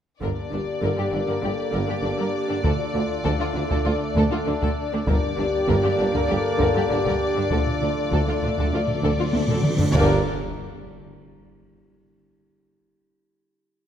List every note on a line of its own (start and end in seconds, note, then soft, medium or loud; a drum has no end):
0.20 0.28 G1 soft
0.20 0.29 G1 medium
0.20 0.28 G2 soft
0.20 0.27 D3 soft
0.20 5.04 D3 soft
0.20 2.61 A#3 soft
0.20 0.50 D4 medium
0.20 5.05 D4 soft
0.20 2.61 G4 soft
0.20 0.29 A#4 soft
0.20 5.03 D5 soft
0.20 5.05 D5 soft
0.20 taiko medium
0.51 0.59 G1 soft
0.51 0.58 G2 soft
0.51 0.58 D3 soft
0.51 0.59 D4 soft
0.51 1.44 G4 medium
0.82 0.88 G1 medium
0.82 0.89 G1 soft
0.82 0.89 G2 medium
0.82 0.88 D3 soft
0.82 0.90 A#4 soft
0.97 1.04 G2 soft
0.97 1.03 D3 soft
0.97 1.05 G4 soft
1.11 1.19 G1 soft
1.11 1.19 G2 soft
1.11 1.18 D3 soft
1.11 1.20 D4 soft
1.27 1.34 G2 medium
1.27 1.33 D3 soft
1.27 1.34 A#4 soft
1.41 1.49 G1 soft
1.41 1.50 G1 soft
1.41 1.49 G2 soft
1.41 1.48 D3 soft
1.41 1.50 G4 soft
1.41 1.74 A4 medium
1.72 1.80 G1 medium
1.72 1.80 G2 medium
1.72 1.78 D3 medium
1.72 2.65 G4 medium
1.72 1.80 A#4 soft
1.88 1.95 G2 soft
1.88 1.94 D3 soft
1.88 1.96 G4 soft
2.02 2.10 G1 soft
2.02 2.09 G2 soft
2.02 2.09 D3 soft
2.02 2.10 D4 soft
2.17 2.25 G2 medium
2.17 2.23 D3 soft
2.17 2.26 A#4 medium
2.49 2.55 G2 soft
2.49 2.55 D3 soft
2.49 2.56 D4 medium
2.62 2.71 D2 medium
2.62 2.70 D3 medium
2.62 5.07 A3 medium
2.62 5.04 A3 medium
2.62 3.84 F4 medium
2.62 5.07 A4 medium
2.62 2.71 A4 medium
2.62 taiko medium
2.94 3.01 D2 soft
2.94 3.00 D3 soft
2.94 3.01 D4 soft
3.24 3.31 D2 medium
3.24 3.31 D3 medium
3.24 3.31 A4 medium
3.24 taiko medium
3.39 3.46 D2 soft
3.39 3.46 D3 medium
3.39 3.47 F4 soft
3.54 3.61 D2 soft
3.54 3.62 D2 medium
3.54 3.61 D3 soft
3.54 3.62 D4 soft
3.69 3.77 D2 medium
3.69 3.76 D3 medium
3.69 3.77 A4 medium
3.69 taiko medium
3.85 3.92 D2 soft
3.85 3.92 D2 medium
3.85 3.91 D3 soft
3.85 5.06 D4 medium
3.85 3.92 F4 medium
4.16 4.22 D2 medium
4.16 4.23 D2 medium
4.16 4.22 D3 medium
4.16 4.24 A4 medium
4.16 taiko medium
4.31 4.38 D2 medium
4.31 4.38 D3 medium
4.31 4.38 F4 medium
4.46 4.53 D2 medium
4.46 4.52 D3 medium
4.46 4.53 D4 medium
4.62 4.69 D2 medium
4.62 4.68 D3 medium
4.62 4.69 A4 medium
4.62 taiko medium
4.93 5.00 D2 medium
4.93 4.99 D3 medium
4.93 4.99 D4 medium
5.05 5.13 G1 medium
5.05 5.14 G1 medium
5.05 5.14 G2 medium
5.05 5.95 G2 medium
5.05 9.59 D3 medium
5.05 5.13 D3 medium
5.05 7.47 A#3 medium
5.05 7.51 A#3 medium
5.05 9.60 D4 medium
5.05 5.38 D4 medium
5.05 7.51 G4 medium
5.05 5.14 A#4 medium
5.05 9.70 D5 medium
5.05 9.60 D5 medium
5.05 taiko medium
5.37 5.44 G1 soft
5.37 5.45 G2 soft
5.37 5.43 D3 soft
5.37 5.45 D4 medium
5.37 6.13 G4 medium
5.68 5.74 G1 medium
5.68 5.75 G1 medium
5.68 5.75 G2 medium
5.68 5.74 D3 medium
5.68 5.75 A#4 medium
5.68 taiko medium
5.83 5.91 G2 medium
5.83 5.89 D3 medium
5.83 5.90 G4 soft
5.97 6.06 G1 medium
5.97 6.05 G2 medium
5.97 6.04 D3 soft
5.97 6.06 D4 medium
6.12 6.20 G2 medium
6.12 6.19 D3 medium
6.12 6.21 A#4 medium
6.12 taiko medium
6.28 6.36 G1 soft
6.28 6.36 G1 medium
6.28 6.36 G2 medium
6.28 6.34 D3 medium
6.28 6.37 G4 medium
6.28 6.90 A4 medium
6.58 6.66 G1 medium
6.58 6.66 G2 medium
6.58 6.65 D3 medium
6.58 6.67 A#4 medium
6.58 taiko medium
6.74 6.82 G2 soft
6.74 6.80 D3 medium
6.74 6.83 G4 soft
6.88 6.97 G1 soft
6.88 6.97 G2 soft
6.88 6.95 D3 medium
6.88 6.98 D4 medium
6.88 7.51 G4 medium
7.04 7.12 G2 medium
7.04 7.10 D3 medium
7.04 7.13 A#4 medium
7.04 taiko medium
7.35 7.43 G2 soft
7.35 7.42 D3 soft
7.35 7.43 D4 soft
7.51 7.58 D2 medium
7.51 7.59 D2 medium
7.51 7.58 D3 medium
7.51 9.64 A3 medium
7.51 9.61 A3 medium
7.51 9.30 F4 medium
7.51 9.64 A4 medium
7.51 7.58 A4 medium
7.51 taiko medium
7.51 cymbal swell medium
7.66 7.73 D3 soft
7.66 taiko low-mid soft
7.74 7.80 D3 soft
7.82 7.88 D2 soft
7.82 7.89 D2 soft
7.82 7.88 D3 soft
7.82 7.89 D4 soft
7.89 7.96 D3 soft
7.97 8.03 D3 soft
8.04 8.11 D3 soft
8.11 8.18 D2 medium
8.11 8.19 D2 medium
8.11 8.18 D3 medium
8.11 8.18 D3 soft
8.11 8.19 A4 medium
8.11 taiko medium
8.19 8.26 D3 soft
8.27 8.34 D2 soft
8.27 8.34 D3 soft
8.27 8.33 D3 soft
8.27 8.35 F4 soft
8.42 8.48 D2 soft
8.42 8.49 D2 soft
8.42 8.48 D3 soft
8.42 8.49 D3 soft
8.42 8.50 D4 medium
8.42 taiko low-mid medium
8.50 8.56 D3 soft
8.57 8.64 D2 medium
8.57 8.63 D3 medium
8.57 8.64 D3 medium
8.57 8.65 A4 medium
8.57 taiko medium
8.64 8.71 D3 medium
8.72 8.78 D2 soft
8.72 8.79 D2 soft
8.72 8.80 D2 soft
8.72 8.78 D3 medium
8.72 8.79 D3 soft
8.72 8.81 F4 soft
8.80 8.86 D3 medium
8.87 8.93 D3 medium
8.87 taiko low-mid soft
8.94 9.01 D3 medium
9.02 9.09 D2 medium
9.02 9.10 D2 medium
9.02 9.09 D3 medium
9.02 9.10 A4 medium
9.02 taiko medium
9.10 9.16 D3 medium
9.17 9.26 D2 soft
9.17 9.24 D3 medium
9.17 9.25 D3 soft
9.17 9.26 F4 soft
9.25 9.31 D3 medium
9.32 9.40 D2 soft
9.32 9.41 D2 soft
9.32 9.39 D3 medium
9.32 9.41 D4 soft
9.32 taiko high medium
9.40 9.46 D3 medium
9.47 9.56 D2 medium
9.47 9.53 D3 medium
9.47 9.56 D3 medium
9.47 9.56 A4 medium
9.47 taiko low-mid medium
9.54 9.60 D3 medium
9.61 9.67 D3 medium
9.61 taiko mid medium
9.68 9.75 D3 medium
9.76 9.86 D2 soft
9.76 9.83 D3 loud
9.76 9.86 D3 medium
9.76 9.86 D4 soft
9.76 taiko low medium
9.84 9.91 D3 loud
9.94 10.28 G1 medium
9.94 10.21 G1 medium
9.94 10.23 G2 medium
9.94 10.29 G2 medium
9.94 10.21 D3 medium
9.94 10.29 D3 medium
9.94 10.21 A#3 medium
9.94 10.20 D4 medium
9.94 10.20 G4 loud
9.94 10.21 G4 medium
9.94 10.28 A#4 medium
9.94 10.21 D5 medium
9.94 10.29 D5 medium
9.94 taiko loud
9.94 impact medium